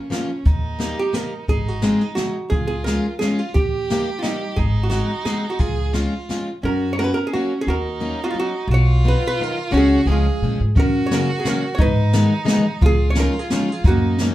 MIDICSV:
0, 0, Header, 1, 6, 480
1, 0, Start_track
1, 0, Key_signature, -5, "major"
1, 0, Tempo, 343053
1, 644, Time_signature, 3, 2, 24, 8
1, 9293, Key_signature, 6, "major"
1, 20073, End_track
2, 0, Start_track
2, 0, Title_t, "Hollow-body jazz guitar"
2, 0, Program_c, 0, 26
2, 0, Note_on_c, 0, 65, 68
2, 160, Note_off_c, 0, 65, 0
2, 1390, Note_on_c, 0, 67, 73
2, 1604, Note_off_c, 0, 67, 0
2, 1604, Note_on_c, 0, 70, 80
2, 2087, Note_on_c, 0, 68, 89
2, 2098, Note_off_c, 0, 70, 0
2, 2355, Note_off_c, 0, 68, 0
2, 2355, Note_on_c, 0, 66, 67
2, 2563, Note_off_c, 0, 66, 0
2, 2563, Note_on_c, 0, 65, 74
2, 2813, Note_off_c, 0, 65, 0
2, 2813, Note_on_c, 0, 63, 73
2, 3005, Note_off_c, 0, 63, 0
2, 3011, Note_on_c, 0, 66, 77
2, 3477, Note_off_c, 0, 66, 0
2, 3495, Note_on_c, 0, 68, 85
2, 3725, Note_off_c, 0, 68, 0
2, 3742, Note_on_c, 0, 68, 76
2, 3972, Note_off_c, 0, 68, 0
2, 3978, Note_on_c, 0, 70, 73
2, 4442, Note_off_c, 0, 70, 0
2, 4463, Note_on_c, 0, 68, 84
2, 4737, Note_off_c, 0, 68, 0
2, 4737, Note_on_c, 0, 65, 75
2, 4951, Note_off_c, 0, 65, 0
2, 4957, Note_on_c, 0, 67, 81
2, 5854, Note_off_c, 0, 67, 0
2, 5859, Note_on_c, 0, 65, 50
2, 5912, Note_on_c, 0, 63, 72
2, 5938, Note_off_c, 0, 65, 0
2, 6385, Note_on_c, 0, 68, 81
2, 6412, Note_off_c, 0, 63, 0
2, 6757, Note_off_c, 0, 68, 0
2, 6763, Note_on_c, 0, 66, 63
2, 6834, Note_off_c, 0, 66, 0
2, 6851, Note_on_c, 0, 66, 70
2, 7343, Note_off_c, 0, 66, 0
2, 7349, Note_on_c, 0, 68, 72
2, 7689, Note_off_c, 0, 68, 0
2, 7695, Note_on_c, 0, 66, 65
2, 7819, Note_off_c, 0, 66, 0
2, 7819, Note_on_c, 0, 65, 69
2, 9062, Note_off_c, 0, 65, 0
2, 9282, Note_on_c, 0, 61, 63
2, 9308, Note_on_c, 0, 70, 84
2, 9685, Note_off_c, 0, 70, 0
2, 9695, Note_on_c, 0, 73, 71
2, 9774, Note_off_c, 0, 73, 0
2, 9779, Note_on_c, 0, 70, 89
2, 9847, Note_off_c, 0, 70, 0
2, 9852, Note_on_c, 0, 71, 69
2, 9962, Note_off_c, 0, 71, 0
2, 9980, Note_off_c, 0, 61, 0
2, 9992, Note_on_c, 0, 70, 83
2, 10162, Note_off_c, 0, 70, 0
2, 10170, Note_on_c, 0, 68, 77
2, 10257, Note_off_c, 0, 68, 0
2, 10262, Note_on_c, 0, 66, 82
2, 10602, Note_off_c, 0, 66, 0
2, 10652, Note_on_c, 0, 68, 81
2, 10695, Note_off_c, 0, 68, 0
2, 10749, Note_on_c, 0, 66, 66
2, 10771, Note_on_c, 0, 70, 81
2, 11427, Note_off_c, 0, 66, 0
2, 11510, Note_off_c, 0, 70, 0
2, 11525, Note_on_c, 0, 65, 80
2, 11531, Note_on_c, 0, 66, 66
2, 11554, Note_off_c, 0, 65, 0
2, 11582, Note_off_c, 0, 66, 0
2, 11621, Note_on_c, 0, 65, 69
2, 11711, Note_off_c, 0, 65, 0
2, 11747, Note_on_c, 0, 66, 92
2, 12174, Note_off_c, 0, 66, 0
2, 12191, Note_on_c, 0, 66, 74
2, 12228, Note_on_c, 0, 73, 91
2, 12687, Note_off_c, 0, 73, 0
2, 12709, Note_on_c, 0, 71, 88
2, 12866, Note_off_c, 0, 66, 0
2, 12943, Note_off_c, 0, 71, 0
2, 12977, Note_on_c, 0, 71, 101
2, 13201, Note_off_c, 0, 71, 0
2, 13201, Note_on_c, 0, 70, 80
2, 13625, Note_on_c, 0, 61, 64
2, 13655, Note_off_c, 0, 70, 0
2, 13675, Note_on_c, 0, 68, 93
2, 14062, Note_off_c, 0, 61, 0
2, 14114, Note_on_c, 0, 56, 49
2, 14134, Note_off_c, 0, 68, 0
2, 14155, Note_on_c, 0, 65, 69
2, 14797, Note_off_c, 0, 56, 0
2, 14819, Note_off_c, 0, 65, 0
2, 15070, Note_on_c, 0, 61, 64
2, 15105, Note_on_c, 0, 70, 86
2, 15465, Note_off_c, 0, 70, 0
2, 15481, Note_on_c, 0, 73, 72
2, 15568, Note_off_c, 0, 73, 0
2, 15588, Note_on_c, 0, 70, 84
2, 15758, Note_off_c, 0, 61, 0
2, 15939, Note_off_c, 0, 70, 0
2, 15944, Note_on_c, 0, 68, 61
2, 16051, Note_off_c, 0, 68, 0
2, 16051, Note_on_c, 0, 70, 84
2, 16415, Note_off_c, 0, 70, 0
2, 16436, Note_on_c, 0, 73, 78
2, 16487, Note_on_c, 0, 63, 67
2, 16523, Note_off_c, 0, 73, 0
2, 16532, Note_on_c, 0, 71, 85
2, 17179, Note_off_c, 0, 63, 0
2, 17203, Note_off_c, 0, 71, 0
2, 17940, Note_on_c, 0, 65, 66
2, 17991, Note_on_c, 0, 68, 98
2, 18335, Note_on_c, 0, 73, 79
2, 18340, Note_off_c, 0, 68, 0
2, 18429, Note_off_c, 0, 73, 0
2, 18469, Note_on_c, 0, 70, 94
2, 18622, Note_off_c, 0, 65, 0
2, 18737, Note_off_c, 0, 70, 0
2, 18737, Note_on_c, 0, 68, 79
2, 18924, Note_off_c, 0, 68, 0
2, 18924, Note_on_c, 0, 70, 81
2, 19197, Note_off_c, 0, 70, 0
2, 19197, Note_on_c, 0, 68, 81
2, 19396, Note_off_c, 0, 68, 0
2, 19414, Note_on_c, 0, 66, 78
2, 19429, Note_on_c, 0, 58, 55
2, 20073, Note_off_c, 0, 58, 0
2, 20073, Note_off_c, 0, 66, 0
2, 20073, End_track
3, 0, Start_track
3, 0, Title_t, "Violin"
3, 0, Program_c, 1, 40
3, 0, Note_on_c, 1, 61, 63
3, 653, Note_on_c, 1, 63, 75
3, 674, Note_off_c, 1, 61, 0
3, 2081, Note_off_c, 1, 63, 0
3, 2089, Note_on_c, 1, 63, 79
3, 3257, Note_off_c, 1, 63, 0
3, 3517, Note_on_c, 1, 65, 77
3, 4433, Note_off_c, 1, 65, 0
3, 4504, Note_on_c, 1, 65, 84
3, 4980, Note_on_c, 1, 67, 91
3, 5001, Note_off_c, 1, 65, 0
3, 6422, Note_on_c, 1, 63, 102
3, 6443, Note_off_c, 1, 67, 0
3, 7835, Note_on_c, 1, 68, 94
3, 7856, Note_off_c, 1, 63, 0
3, 8304, Note_on_c, 1, 65, 82
3, 8325, Note_off_c, 1, 68, 0
3, 9064, Note_off_c, 1, 65, 0
3, 9276, Note_on_c, 1, 66, 78
3, 9774, Note_on_c, 1, 61, 77
3, 9795, Note_off_c, 1, 66, 0
3, 10743, Note_on_c, 1, 63, 92
3, 10764, Note_off_c, 1, 61, 0
3, 12152, Note_on_c, 1, 65, 113
3, 12173, Note_off_c, 1, 63, 0
3, 13600, Note_on_c, 1, 66, 101
3, 13621, Note_off_c, 1, 65, 0
3, 14096, Note_on_c, 1, 68, 90
3, 14117, Note_off_c, 1, 66, 0
3, 14840, Note_off_c, 1, 68, 0
3, 15056, Note_on_c, 1, 66, 98
3, 16521, Note_on_c, 1, 63, 91
3, 16542, Note_off_c, 1, 66, 0
3, 17953, Note_on_c, 1, 65, 89
3, 17974, Note_off_c, 1, 63, 0
3, 19395, Note_on_c, 1, 63, 84
3, 19416, Note_off_c, 1, 65, 0
3, 19881, Note_on_c, 1, 61, 74
3, 19902, Note_off_c, 1, 63, 0
3, 20073, Note_off_c, 1, 61, 0
3, 20073, End_track
4, 0, Start_track
4, 0, Title_t, "Steel-string acoustic guitar"
4, 0, Program_c, 2, 25
4, 142, Note_on_c, 2, 53, 64
4, 152, Note_on_c, 2, 58, 44
4, 156, Note_on_c, 2, 61, 61
4, 169, Note_on_c, 2, 65, 74
4, 416, Note_off_c, 2, 53, 0
4, 416, Note_off_c, 2, 58, 0
4, 421, Note_off_c, 2, 61, 0
4, 428, Note_off_c, 2, 65, 0
4, 1101, Note_on_c, 2, 55, 81
4, 1114, Note_on_c, 2, 58, 69
4, 1116, Note_on_c, 2, 63, 70
4, 1123, Note_on_c, 2, 67, 81
4, 1372, Note_off_c, 2, 55, 0
4, 1377, Note_off_c, 2, 67, 0
4, 1378, Note_off_c, 2, 63, 0
4, 1380, Note_off_c, 2, 58, 0
4, 1581, Note_on_c, 2, 55, 52
4, 1584, Note_on_c, 2, 58, 47
4, 1596, Note_on_c, 2, 63, 45
4, 1596, Note_on_c, 2, 67, 50
4, 1852, Note_off_c, 2, 55, 0
4, 1855, Note_off_c, 2, 58, 0
4, 1858, Note_off_c, 2, 67, 0
4, 1860, Note_off_c, 2, 63, 0
4, 2552, Note_on_c, 2, 56, 66
4, 2562, Note_on_c, 2, 60, 52
4, 2565, Note_on_c, 2, 63, 57
4, 2575, Note_on_c, 2, 68, 63
4, 2821, Note_off_c, 2, 56, 0
4, 2822, Note_off_c, 2, 60, 0
4, 2826, Note_off_c, 2, 63, 0
4, 2831, Note_off_c, 2, 68, 0
4, 3043, Note_on_c, 2, 60, 39
4, 3049, Note_on_c, 2, 56, 47
4, 3056, Note_on_c, 2, 63, 40
4, 3063, Note_on_c, 2, 68, 47
4, 3308, Note_off_c, 2, 60, 0
4, 3311, Note_off_c, 2, 56, 0
4, 3315, Note_off_c, 2, 68, 0
4, 3316, Note_off_c, 2, 63, 0
4, 4007, Note_on_c, 2, 56, 60
4, 4017, Note_on_c, 2, 61, 45
4, 4026, Note_on_c, 2, 65, 53
4, 4030, Note_on_c, 2, 68, 57
4, 4274, Note_off_c, 2, 56, 0
4, 4274, Note_off_c, 2, 61, 0
4, 4281, Note_off_c, 2, 68, 0
4, 4282, Note_off_c, 2, 65, 0
4, 4499, Note_on_c, 2, 56, 50
4, 4505, Note_on_c, 2, 61, 43
4, 4513, Note_on_c, 2, 65, 44
4, 4518, Note_on_c, 2, 68, 53
4, 4760, Note_off_c, 2, 61, 0
4, 4760, Note_off_c, 2, 65, 0
4, 4761, Note_off_c, 2, 56, 0
4, 4768, Note_off_c, 2, 68, 0
4, 5468, Note_on_c, 2, 55, 64
4, 5478, Note_on_c, 2, 58, 58
4, 5479, Note_on_c, 2, 63, 55
4, 5480, Note_on_c, 2, 67, 65
4, 5720, Note_off_c, 2, 55, 0
4, 5723, Note_off_c, 2, 63, 0
4, 5726, Note_off_c, 2, 58, 0
4, 5726, Note_off_c, 2, 67, 0
4, 5931, Note_on_c, 2, 58, 45
4, 5940, Note_on_c, 2, 55, 53
4, 5946, Note_on_c, 2, 67, 48
4, 5951, Note_on_c, 2, 63, 38
4, 6192, Note_off_c, 2, 58, 0
4, 6194, Note_off_c, 2, 67, 0
4, 6196, Note_off_c, 2, 55, 0
4, 6196, Note_off_c, 2, 63, 0
4, 6881, Note_on_c, 2, 56, 64
4, 6888, Note_on_c, 2, 60, 55
4, 6890, Note_on_c, 2, 63, 64
4, 6898, Note_on_c, 2, 66, 60
4, 7144, Note_off_c, 2, 60, 0
4, 7145, Note_off_c, 2, 56, 0
4, 7148, Note_off_c, 2, 63, 0
4, 7149, Note_off_c, 2, 66, 0
4, 7356, Note_on_c, 2, 56, 53
4, 7359, Note_on_c, 2, 60, 42
4, 7360, Note_on_c, 2, 63, 54
4, 7373, Note_on_c, 2, 66, 57
4, 7619, Note_off_c, 2, 60, 0
4, 7620, Note_off_c, 2, 56, 0
4, 7623, Note_off_c, 2, 63, 0
4, 7626, Note_off_c, 2, 66, 0
4, 8305, Note_on_c, 2, 56, 60
4, 8315, Note_on_c, 2, 60, 47
4, 8319, Note_on_c, 2, 61, 55
4, 8329, Note_on_c, 2, 65, 63
4, 8578, Note_off_c, 2, 56, 0
4, 8579, Note_off_c, 2, 60, 0
4, 8584, Note_off_c, 2, 61, 0
4, 8589, Note_off_c, 2, 65, 0
4, 8804, Note_on_c, 2, 56, 67
4, 8810, Note_on_c, 2, 60, 50
4, 8821, Note_on_c, 2, 61, 50
4, 8826, Note_on_c, 2, 65, 63
4, 9072, Note_off_c, 2, 56, 0
4, 9075, Note_off_c, 2, 60, 0
4, 9078, Note_off_c, 2, 61, 0
4, 9083, Note_off_c, 2, 65, 0
4, 9780, Note_on_c, 2, 54, 66
4, 9786, Note_on_c, 2, 58, 55
4, 9792, Note_on_c, 2, 66, 78
4, 9799, Note_on_c, 2, 61, 56
4, 10040, Note_off_c, 2, 54, 0
4, 10043, Note_off_c, 2, 58, 0
4, 10046, Note_off_c, 2, 66, 0
4, 10049, Note_off_c, 2, 61, 0
4, 10266, Note_on_c, 2, 54, 61
4, 10273, Note_on_c, 2, 58, 50
4, 10285, Note_on_c, 2, 61, 41
4, 10289, Note_on_c, 2, 66, 52
4, 10521, Note_off_c, 2, 54, 0
4, 10527, Note_off_c, 2, 58, 0
4, 10527, Note_off_c, 2, 66, 0
4, 10529, Note_off_c, 2, 61, 0
4, 11199, Note_on_c, 2, 54, 69
4, 11209, Note_on_c, 2, 63, 76
4, 11214, Note_on_c, 2, 58, 59
4, 11223, Note_on_c, 2, 61, 61
4, 11466, Note_off_c, 2, 54, 0
4, 11468, Note_off_c, 2, 58, 0
4, 11471, Note_off_c, 2, 63, 0
4, 11473, Note_off_c, 2, 61, 0
4, 11666, Note_on_c, 2, 58, 50
4, 11672, Note_on_c, 2, 54, 55
4, 11677, Note_on_c, 2, 63, 56
4, 11691, Note_on_c, 2, 61, 45
4, 11936, Note_off_c, 2, 58, 0
4, 11939, Note_off_c, 2, 54, 0
4, 11943, Note_off_c, 2, 63, 0
4, 11946, Note_off_c, 2, 61, 0
4, 12651, Note_on_c, 2, 51, 66
4, 12663, Note_on_c, 2, 54, 59
4, 12664, Note_on_c, 2, 59, 72
4, 12668, Note_on_c, 2, 63, 71
4, 12909, Note_off_c, 2, 51, 0
4, 12910, Note_off_c, 2, 54, 0
4, 12914, Note_off_c, 2, 63, 0
4, 12915, Note_off_c, 2, 59, 0
4, 13146, Note_on_c, 2, 51, 51
4, 13153, Note_on_c, 2, 59, 59
4, 13156, Note_on_c, 2, 54, 47
4, 13169, Note_on_c, 2, 63, 57
4, 13396, Note_off_c, 2, 51, 0
4, 13399, Note_off_c, 2, 59, 0
4, 13402, Note_off_c, 2, 54, 0
4, 13404, Note_off_c, 2, 63, 0
4, 13588, Note_on_c, 2, 49, 75
4, 13595, Note_on_c, 2, 54, 66
4, 13598, Note_on_c, 2, 56, 61
4, 13602, Note_on_c, 2, 61, 82
4, 13990, Note_off_c, 2, 49, 0
4, 13991, Note_off_c, 2, 56, 0
4, 13993, Note_off_c, 2, 61, 0
4, 13994, Note_off_c, 2, 54, 0
4, 14099, Note_on_c, 2, 49, 75
4, 14108, Note_on_c, 2, 53, 52
4, 14108, Note_on_c, 2, 56, 56
4, 14117, Note_on_c, 2, 61, 66
4, 14356, Note_off_c, 2, 49, 0
4, 14357, Note_off_c, 2, 53, 0
4, 14361, Note_off_c, 2, 56, 0
4, 14361, Note_off_c, 2, 61, 0
4, 14596, Note_on_c, 2, 49, 51
4, 14603, Note_on_c, 2, 53, 41
4, 14608, Note_on_c, 2, 56, 46
4, 14615, Note_on_c, 2, 61, 64
4, 14849, Note_off_c, 2, 49, 0
4, 14851, Note_off_c, 2, 56, 0
4, 14852, Note_off_c, 2, 53, 0
4, 14853, Note_off_c, 2, 61, 0
4, 15552, Note_on_c, 2, 54, 61
4, 15559, Note_on_c, 2, 49, 70
4, 15562, Note_on_c, 2, 58, 58
4, 15566, Note_on_c, 2, 61, 74
4, 15810, Note_off_c, 2, 54, 0
4, 15811, Note_off_c, 2, 58, 0
4, 15812, Note_off_c, 2, 61, 0
4, 15813, Note_off_c, 2, 49, 0
4, 16017, Note_on_c, 2, 49, 52
4, 16029, Note_on_c, 2, 58, 56
4, 16031, Note_on_c, 2, 54, 54
4, 16037, Note_on_c, 2, 61, 60
4, 16280, Note_off_c, 2, 49, 0
4, 16283, Note_off_c, 2, 54, 0
4, 16287, Note_off_c, 2, 58, 0
4, 16287, Note_off_c, 2, 61, 0
4, 16982, Note_on_c, 2, 51, 73
4, 16991, Note_on_c, 2, 56, 58
4, 16997, Note_on_c, 2, 59, 65
4, 17003, Note_on_c, 2, 63, 78
4, 17240, Note_off_c, 2, 51, 0
4, 17242, Note_off_c, 2, 56, 0
4, 17247, Note_off_c, 2, 59, 0
4, 17250, Note_off_c, 2, 63, 0
4, 17416, Note_on_c, 2, 51, 68
4, 17426, Note_on_c, 2, 56, 68
4, 17437, Note_on_c, 2, 63, 84
4, 17444, Note_on_c, 2, 59, 52
4, 17698, Note_off_c, 2, 51, 0
4, 17699, Note_off_c, 2, 56, 0
4, 17699, Note_off_c, 2, 59, 0
4, 17701, Note_off_c, 2, 63, 0
4, 18404, Note_on_c, 2, 53, 73
4, 18416, Note_on_c, 2, 56, 59
4, 18416, Note_on_c, 2, 61, 71
4, 18425, Note_on_c, 2, 63, 63
4, 18669, Note_off_c, 2, 53, 0
4, 18671, Note_off_c, 2, 56, 0
4, 18671, Note_off_c, 2, 63, 0
4, 18672, Note_off_c, 2, 61, 0
4, 18907, Note_on_c, 2, 53, 56
4, 18914, Note_on_c, 2, 56, 43
4, 18914, Note_on_c, 2, 61, 54
4, 18926, Note_on_c, 2, 63, 64
4, 19157, Note_off_c, 2, 53, 0
4, 19157, Note_off_c, 2, 56, 0
4, 19161, Note_off_c, 2, 61, 0
4, 19163, Note_off_c, 2, 63, 0
4, 19876, Note_on_c, 2, 54, 71
4, 19883, Note_on_c, 2, 61, 65
4, 19888, Note_on_c, 2, 58, 60
4, 19894, Note_on_c, 2, 63, 61
4, 20073, Note_off_c, 2, 54, 0
4, 20073, Note_off_c, 2, 58, 0
4, 20073, Note_off_c, 2, 61, 0
4, 20073, Note_off_c, 2, 63, 0
4, 20073, End_track
5, 0, Start_track
5, 0, Title_t, "Upright bass"
5, 0, Program_c, 3, 32
5, 635, Note_on_c, 3, 39, 99
5, 1259, Note_off_c, 3, 39, 0
5, 2074, Note_on_c, 3, 32, 71
5, 2703, Note_off_c, 3, 32, 0
5, 3516, Note_on_c, 3, 37, 85
5, 4148, Note_off_c, 3, 37, 0
5, 4963, Note_on_c, 3, 39, 72
5, 5587, Note_off_c, 3, 39, 0
5, 6386, Note_on_c, 3, 32, 84
5, 7014, Note_off_c, 3, 32, 0
5, 7824, Note_on_c, 3, 37, 73
5, 8457, Note_off_c, 3, 37, 0
5, 9278, Note_on_c, 3, 42, 83
5, 9909, Note_off_c, 3, 42, 0
5, 10728, Note_on_c, 3, 39, 85
5, 11349, Note_off_c, 3, 39, 0
5, 12138, Note_on_c, 3, 35, 99
5, 12769, Note_off_c, 3, 35, 0
5, 13602, Note_on_c, 3, 37, 85
5, 13915, Note_off_c, 3, 37, 0
5, 14070, Note_on_c, 3, 37, 93
5, 14390, Note_off_c, 3, 37, 0
5, 14577, Note_on_c, 3, 46, 77
5, 14812, Note_off_c, 3, 46, 0
5, 14834, Note_on_c, 3, 44, 66
5, 15034, Note_off_c, 3, 44, 0
5, 15050, Note_on_c, 3, 42, 80
5, 15679, Note_off_c, 3, 42, 0
5, 16489, Note_on_c, 3, 44, 88
5, 17113, Note_off_c, 3, 44, 0
5, 17925, Note_on_c, 3, 37, 93
5, 18548, Note_off_c, 3, 37, 0
5, 19365, Note_on_c, 3, 42, 85
5, 19995, Note_off_c, 3, 42, 0
5, 20073, End_track
6, 0, Start_track
6, 0, Title_t, "Drums"
6, 164, Note_on_c, 9, 38, 53
6, 164, Note_on_c, 9, 42, 45
6, 304, Note_off_c, 9, 38, 0
6, 304, Note_off_c, 9, 42, 0
6, 635, Note_on_c, 9, 42, 47
6, 640, Note_on_c, 9, 36, 70
6, 775, Note_off_c, 9, 42, 0
6, 780, Note_off_c, 9, 36, 0
6, 1117, Note_on_c, 9, 38, 51
6, 1117, Note_on_c, 9, 42, 44
6, 1256, Note_off_c, 9, 38, 0
6, 1256, Note_off_c, 9, 42, 0
6, 1591, Note_on_c, 9, 38, 58
6, 1591, Note_on_c, 9, 42, 45
6, 1731, Note_off_c, 9, 38, 0
6, 1731, Note_off_c, 9, 42, 0
6, 2077, Note_on_c, 9, 36, 64
6, 2078, Note_on_c, 9, 42, 42
6, 2217, Note_off_c, 9, 36, 0
6, 2218, Note_off_c, 9, 42, 0
6, 2543, Note_on_c, 9, 38, 58
6, 2543, Note_on_c, 9, 42, 37
6, 2683, Note_off_c, 9, 38, 0
6, 2683, Note_off_c, 9, 42, 0
6, 3026, Note_on_c, 9, 38, 56
6, 3026, Note_on_c, 9, 42, 40
6, 3166, Note_off_c, 9, 38, 0
6, 3166, Note_off_c, 9, 42, 0
6, 3522, Note_on_c, 9, 36, 71
6, 3524, Note_on_c, 9, 42, 35
6, 3662, Note_off_c, 9, 36, 0
6, 3664, Note_off_c, 9, 42, 0
6, 4006, Note_on_c, 9, 38, 59
6, 4006, Note_on_c, 9, 42, 43
6, 4146, Note_off_c, 9, 38, 0
6, 4146, Note_off_c, 9, 42, 0
6, 4486, Note_on_c, 9, 38, 51
6, 4486, Note_on_c, 9, 42, 38
6, 4626, Note_off_c, 9, 38, 0
6, 4626, Note_off_c, 9, 42, 0
6, 4962, Note_on_c, 9, 42, 41
6, 4973, Note_on_c, 9, 36, 78
6, 5102, Note_off_c, 9, 42, 0
6, 5113, Note_off_c, 9, 36, 0
6, 5456, Note_on_c, 9, 38, 52
6, 5456, Note_on_c, 9, 42, 43
6, 5596, Note_off_c, 9, 38, 0
6, 5596, Note_off_c, 9, 42, 0
6, 5922, Note_on_c, 9, 38, 63
6, 5922, Note_on_c, 9, 42, 45
6, 6061, Note_off_c, 9, 38, 0
6, 6061, Note_off_c, 9, 42, 0
6, 6397, Note_on_c, 9, 42, 40
6, 6399, Note_on_c, 9, 36, 61
6, 6537, Note_off_c, 9, 42, 0
6, 6539, Note_off_c, 9, 36, 0
6, 6861, Note_on_c, 9, 38, 52
6, 6861, Note_on_c, 9, 42, 42
6, 7001, Note_off_c, 9, 38, 0
6, 7001, Note_off_c, 9, 42, 0
6, 7349, Note_on_c, 9, 38, 53
6, 7349, Note_on_c, 9, 42, 37
6, 7489, Note_off_c, 9, 38, 0
6, 7489, Note_off_c, 9, 42, 0
6, 7828, Note_on_c, 9, 36, 71
6, 7831, Note_on_c, 9, 42, 39
6, 7968, Note_off_c, 9, 36, 0
6, 7971, Note_off_c, 9, 42, 0
6, 8308, Note_on_c, 9, 38, 50
6, 8308, Note_on_c, 9, 42, 36
6, 8448, Note_off_c, 9, 38, 0
6, 8448, Note_off_c, 9, 42, 0
6, 8809, Note_on_c, 9, 38, 47
6, 8809, Note_on_c, 9, 42, 39
6, 8949, Note_off_c, 9, 38, 0
6, 8949, Note_off_c, 9, 42, 0
6, 15056, Note_on_c, 9, 42, 40
6, 15057, Note_on_c, 9, 36, 88
6, 15195, Note_off_c, 9, 42, 0
6, 15197, Note_off_c, 9, 36, 0
6, 15548, Note_on_c, 9, 38, 64
6, 15548, Note_on_c, 9, 42, 41
6, 15688, Note_off_c, 9, 38, 0
6, 15688, Note_off_c, 9, 42, 0
6, 16022, Note_on_c, 9, 38, 63
6, 16022, Note_on_c, 9, 42, 46
6, 16161, Note_off_c, 9, 38, 0
6, 16161, Note_off_c, 9, 42, 0
6, 16492, Note_on_c, 9, 42, 40
6, 16493, Note_on_c, 9, 36, 87
6, 16632, Note_off_c, 9, 36, 0
6, 16632, Note_off_c, 9, 42, 0
6, 16975, Note_on_c, 9, 38, 71
6, 16975, Note_on_c, 9, 42, 52
6, 17115, Note_off_c, 9, 38, 0
6, 17115, Note_off_c, 9, 42, 0
6, 17457, Note_on_c, 9, 38, 67
6, 17457, Note_on_c, 9, 42, 48
6, 17597, Note_off_c, 9, 38, 0
6, 17597, Note_off_c, 9, 42, 0
6, 17933, Note_on_c, 9, 36, 81
6, 17935, Note_on_c, 9, 42, 40
6, 18073, Note_off_c, 9, 36, 0
6, 18075, Note_off_c, 9, 42, 0
6, 18400, Note_on_c, 9, 38, 65
6, 18400, Note_on_c, 9, 42, 47
6, 18540, Note_off_c, 9, 38, 0
6, 18540, Note_off_c, 9, 42, 0
6, 18892, Note_on_c, 9, 38, 67
6, 18892, Note_on_c, 9, 42, 43
6, 19032, Note_off_c, 9, 38, 0
6, 19032, Note_off_c, 9, 42, 0
6, 19367, Note_on_c, 9, 42, 42
6, 19370, Note_on_c, 9, 36, 76
6, 19507, Note_off_c, 9, 42, 0
6, 19510, Note_off_c, 9, 36, 0
6, 19845, Note_on_c, 9, 38, 62
6, 19845, Note_on_c, 9, 42, 43
6, 19985, Note_off_c, 9, 38, 0
6, 19985, Note_off_c, 9, 42, 0
6, 20073, End_track
0, 0, End_of_file